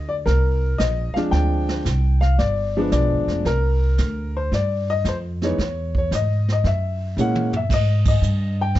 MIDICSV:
0, 0, Header, 1, 5, 480
1, 0, Start_track
1, 0, Tempo, 530504
1, 1205, Time_signature, 4, 2, 24, 8
1, 7957, End_track
2, 0, Start_track
2, 0, Title_t, "Upright piano"
2, 0, Program_c, 0, 0
2, 78, Note_on_c, 0, 74, 87
2, 124, Note_off_c, 0, 74, 0
2, 232, Note_on_c, 0, 70, 83
2, 684, Note_off_c, 0, 70, 0
2, 709, Note_on_c, 0, 75, 90
2, 1020, Note_off_c, 0, 75, 0
2, 1029, Note_on_c, 0, 77, 86
2, 1056, Note_on_c, 0, 53, 70
2, 1057, Note_on_c, 0, 60, 56
2, 1060, Note_on_c, 0, 56, 64
2, 1063, Note_on_c, 0, 62, 77
2, 1075, Note_off_c, 0, 77, 0
2, 1188, Note_on_c, 0, 79, 91
2, 1657, Note_off_c, 0, 53, 0
2, 1657, Note_off_c, 0, 60, 0
2, 1659, Note_off_c, 0, 56, 0
2, 1660, Note_off_c, 0, 62, 0
2, 1967, Note_off_c, 0, 79, 0
2, 1998, Note_on_c, 0, 77, 86
2, 2159, Note_on_c, 0, 74, 88
2, 2163, Note_off_c, 0, 77, 0
2, 2504, Note_on_c, 0, 53, 70
2, 2505, Note_on_c, 0, 56, 67
2, 2509, Note_on_c, 0, 59, 67
2, 2515, Note_on_c, 0, 62, 83
2, 2608, Note_off_c, 0, 74, 0
2, 2641, Note_on_c, 0, 74, 97
2, 3101, Note_off_c, 0, 53, 0
2, 3101, Note_off_c, 0, 56, 0
2, 3103, Note_off_c, 0, 59, 0
2, 3106, Note_off_c, 0, 62, 0
2, 3131, Note_on_c, 0, 70, 88
2, 3138, Note_off_c, 0, 74, 0
2, 3951, Note_on_c, 0, 72, 83
2, 3959, Note_off_c, 0, 70, 0
2, 4085, Note_off_c, 0, 72, 0
2, 4107, Note_on_c, 0, 74, 80
2, 4401, Note_off_c, 0, 74, 0
2, 4434, Note_on_c, 0, 75, 99
2, 4581, Note_off_c, 0, 75, 0
2, 4602, Note_on_c, 0, 72, 84
2, 4672, Note_off_c, 0, 72, 0
2, 4910, Note_on_c, 0, 52, 66
2, 4912, Note_on_c, 0, 56, 57
2, 4915, Note_on_c, 0, 59, 61
2, 4915, Note_on_c, 0, 63, 69
2, 4927, Note_on_c, 0, 73, 74
2, 5039, Note_off_c, 0, 52, 0
2, 5040, Note_off_c, 0, 56, 0
2, 5041, Note_off_c, 0, 63, 0
2, 5042, Note_off_c, 0, 59, 0
2, 5398, Note_off_c, 0, 73, 0
2, 5411, Note_on_c, 0, 73, 77
2, 5549, Note_off_c, 0, 73, 0
2, 5563, Note_on_c, 0, 75, 85
2, 5880, Note_off_c, 0, 75, 0
2, 5904, Note_on_c, 0, 75, 80
2, 6022, Note_off_c, 0, 75, 0
2, 6035, Note_on_c, 0, 76, 79
2, 6467, Note_off_c, 0, 76, 0
2, 6504, Note_on_c, 0, 56, 64
2, 6507, Note_on_c, 0, 58, 58
2, 6511, Note_on_c, 0, 61, 60
2, 6513, Note_on_c, 0, 64, 69
2, 6518, Note_on_c, 0, 78, 87
2, 6788, Note_off_c, 0, 56, 0
2, 6790, Note_off_c, 0, 58, 0
2, 6792, Note_off_c, 0, 61, 0
2, 6792, Note_off_c, 0, 64, 0
2, 6837, Note_off_c, 0, 78, 0
2, 6846, Note_on_c, 0, 76, 70
2, 6986, Note_off_c, 0, 76, 0
2, 7000, Note_on_c, 0, 75, 91
2, 7299, Note_off_c, 0, 75, 0
2, 7313, Note_on_c, 0, 75, 88
2, 7794, Note_on_c, 0, 79, 88
2, 7795, Note_off_c, 0, 75, 0
2, 7957, Note_off_c, 0, 79, 0
2, 7957, End_track
3, 0, Start_track
3, 0, Title_t, "Upright bass"
3, 0, Program_c, 1, 32
3, 0, Note_on_c, 1, 38, 80
3, 230, Note_off_c, 1, 38, 0
3, 234, Note_on_c, 1, 36, 80
3, 705, Note_off_c, 1, 36, 0
3, 718, Note_on_c, 1, 34, 79
3, 1025, Note_off_c, 1, 34, 0
3, 1190, Note_on_c, 1, 38, 75
3, 1663, Note_off_c, 1, 38, 0
3, 1675, Note_on_c, 1, 36, 86
3, 2146, Note_off_c, 1, 36, 0
3, 2160, Note_on_c, 1, 31, 77
3, 2628, Note_off_c, 1, 31, 0
3, 2639, Note_on_c, 1, 35, 82
3, 2811, Note_on_c, 1, 31, 52
3, 2824, Note_off_c, 1, 35, 0
3, 2957, Note_off_c, 1, 31, 0
3, 2963, Note_on_c, 1, 29, 59
3, 3113, Note_off_c, 1, 29, 0
3, 3121, Note_on_c, 1, 36, 74
3, 3589, Note_off_c, 1, 36, 0
3, 3603, Note_on_c, 1, 38, 86
3, 4070, Note_off_c, 1, 38, 0
3, 4087, Note_on_c, 1, 43, 78
3, 4552, Note_off_c, 1, 43, 0
3, 4565, Note_on_c, 1, 41, 84
3, 5031, Note_off_c, 1, 41, 0
3, 5051, Note_on_c, 1, 40, 83
3, 5514, Note_off_c, 1, 40, 0
3, 5529, Note_on_c, 1, 44, 76
3, 5993, Note_off_c, 1, 44, 0
3, 6008, Note_on_c, 1, 42, 86
3, 6472, Note_off_c, 1, 42, 0
3, 6485, Note_on_c, 1, 46, 83
3, 6950, Note_off_c, 1, 46, 0
3, 6961, Note_on_c, 1, 44, 74
3, 7428, Note_off_c, 1, 44, 0
3, 7434, Note_on_c, 1, 43, 83
3, 7904, Note_off_c, 1, 43, 0
3, 7918, Note_on_c, 1, 41, 83
3, 7957, Note_off_c, 1, 41, 0
3, 7957, End_track
4, 0, Start_track
4, 0, Title_t, "Muted upright bass strokes"
4, 1042, Note_on_c, 9, 29, 39
4, 1132, Note_off_c, 9, 29, 0
4, 7957, End_track
5, 0, Start_track
5, 0, Title_t, "Drums"
5, 242, Note_on_c, 9, 36, 26
5, 243, Note_on_c, 9, 25, 45
5, 243, Note_on_c, 9, 38, 41
5, 333, Note_off_c, 9, 36, 0
5, 334, Note_off_c, 9, 38, 0
5, 719, Note_on_c, 9, 44, 51
5, 720, Note_on_c, 9, 38, 57
5, 721, Note_on_c, 9, 36, 17
5, 809, Note_off_c, 9, 44, 0
5, 810, Note_off_c, 9, 38, 0
5, 812, Note_off_c, 9, 36, 0
5, 1049, Note_on_c, 9, 38, 33
5, 1139, Note_off_c, 9, 38, 0
5, 1197, Note_off_c, 9, 25, 0
5, 1197, Note_on_c, 9, 25, 54
5, 1197, Note_on_c, 9, 38, 45
5, 1198, Note_on_c, 9, 36, 20
5, 1287, Note_off_c, 9, 38, 0
5, 1288, Note_off_c, 9, 36, 0
5, 1527, Note_on_c, 9, 38, 53
5, 1618, Note_off_c, 9, 38, 0
5, 1678, Note_on_c, 9, 44, 63
5, 1679, Note_on_c, 9, 36, 18
5, 1679, Note_on_c, 9, 38, 60
5, 1769, Note_off_c, 9, 36, 0
5, 1769, Note_off_c, 9, 44, 0
5, 1770, Note_off_c, 9, 38, 0
5, 2007, Note_on_c, 9, 38, 34
5, 2097, Note_off_c, 9, 38, 0
5, 2160, Note_on_c, 9, 36, 19
5, 2162, Note_off_c, 9, 25, 0
5, 2162, Note_on_c, 9, 25, 52
5, 2162, Note_on_c, 9, 38, 41
5, 2250, Note_off_c, 9, 36, 0
5, 2253, Note_off_c, 9, 38, 0
5, 2640, Note_on_c, 9, 44, 60
5, 2641, Note_on_c, 9, 36, 18
5, 2641, Note_on_c, 9, 38, 55
5, 2731, Note_off_c, 9, 36, 0
5, 2731, Note_off_c, 9, 44, 0
5, 2732, Note_off_c, 9, 38, 0
5, 2969, Note_on_c, 9, 38, 34
5, 3059, Note_off_c, 9, 38, 0
5, 3123, Note_on_c, 9, 36, 22
5, 3125, Note_off_c, 9, 25, 0
5, 3125, Note_on_c, 9, 25, 56
5, 3125, Note_on_c, 9, 38, 49
5, 3214, Note_off_c, 9, 36, 0
5, 3215, Note_off_c, 9, 38, 0
5, 3602, Note_on_c, 9, 38, 58
5, 3602, Note_on_c, 9, 44, 47
5, 3605, Note_on_c, 9, 36, 23
5, 3692, Note_off_c, 9, 44, 0
5, 3693, Note_off_c, 9, 38, 0
5, 3695, Note_off_c, 9, 36, 0
5, 4089, Note_on_c, 9, 36, 21
5, 4093, Note_off_c, 9, 25, 0
5, 4093, Note_on_c, 9, 25, 52
5, 4093, Note_on_c, 9, 38, 39
5, 4179, Note_off_c, 9, 36, 0
5, 4183, Note_off_c, 9, 38, 0
5, 4568, Note_on_c, 9, 44, 54
5, 4569, Note_on_c, 9, 38, 57
5, 4571, Note_on_c, 9, 36, 22
5, 4658, Note_off_c, 9, 44, 0
5, 4659, Note_off_c, 9, 38, 0
5, 4661, Note_off_c, 9, 36, 0
5, 4902, Note_on_c, 9, 38, 33
5, 4992, Note_off_c, 9, 38, 0
5, 5055, Note_on_c, 9, 36, 24
5, 5058, Note_off_c, 9, 25, 0
5, 5058, Note_on_c, 9, 25, 43
5, 5058, Note_on_c, 9, 38, 43
5, 5145, Note_off_c, 9, 36, 0
5, 5149, Note_off_c, 9, 38, 0
5, 5381, Note_on_c, 9, 36, 54
5, 5472, Note_off_c, 9, 36, 0
5, 5533, Note_on_c, 9, 36, 24
5, 5537, Note_on_c, 9, 38, 63
5, 5537, Note_on_c, 9, 44, 57
5, 5624, Note_off_c, 9, 36, 0
5, 5627, Note_off_c, 9, 44, 0
5, 5628, Note_off_c, 9, 38, 0
5, 5866, Note_on_c, 9, 38, 35
5, 5957, Note_off_c, 9, 38, 0
5, 6012, Note_off_c, 9, 25, 0
5, 6012, Note_on_c, 9, 25, 48
5, 6012, Note_on_c, 9, 36, 26
5, 6012, Note_on_c, 9, 38, 37
5, 6102, Note_off_c, 9, 36, 0
5, 6103, Note_off_c, 9, 38, 0
5, 6493, Note_on_c, 9, 44, 58
5, 6583, Note_off_c, 9, 44, 0
5, 6654, Note_on_c, 9, 47, 59
5, 6745, Note_off_c, 9, 47, 0
5, 6813, Note_on_c, 9, 43, 67
5, 6904, Note_off_c, 9, 43, 0
5, 6968, Note_on_c, 9, 36, 73
5, 6970, Note_off_c, 9, 25, 0
5, 6970, Note_on_c, 9, 25, 45
5, 6970, Note_on_c, 9, 38, 41
5, 6970, Note_on_c, 9, 49, 68
5, 7058, Note_off_c, 9, 36, 0
5, 7060, Note_off_c, 9, 38, 0
5, 7060, Note_off_c, 9, 49, 0
5, 7286, Note_on_c, 9, 49, 77
5, 7290, Note_on_c, 9, 36, 89
5, 7376, Note_off_c, 9, 49, 0
5, 7381, Note_off_c, 9, 36, 0
5, 7443, Note_on_c, 9, 44, 55
5, 7533, Note_off_c, 9, 44, 0
5, 7917, Note_off_c, 9, 25, 0
5, 7917, Note_on_c, 9, 25, 41
5, 7917, Note_on_c, 9, 38, 41
5, 7921, Note_on_c, 9, 36, 20
5, 7957, Note_off_c, 9, 25, 0
5, 7957, Note_off_c, 9, 36, 0
5, 7957, Note_off_c, 9, 38, 0
5, 7957, End_track
0, 0, End_of_file